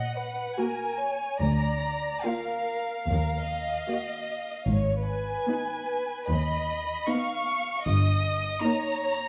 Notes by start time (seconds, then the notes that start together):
Already playing: A#2 D#5 F#5
0.16 B4
0.58 A#3 F#4 A#4 G#5
0.99 C#5
1.41 D2 D5 A#5
2.25 A#3 F4 A#4 F5
3.08 D#2 A#4
3.49 D#5
3.89 A#3 F#4
4.69 G#1 G#2 C#5
5.08 B4 G#5
5.48 B3 D#4
6.29 D#2 D#5 B5
7.09 B3 D#4 F5 C#6
7.86 G1 G2 D#5 D#6
8.62 A#3 D#4 C#5 A#5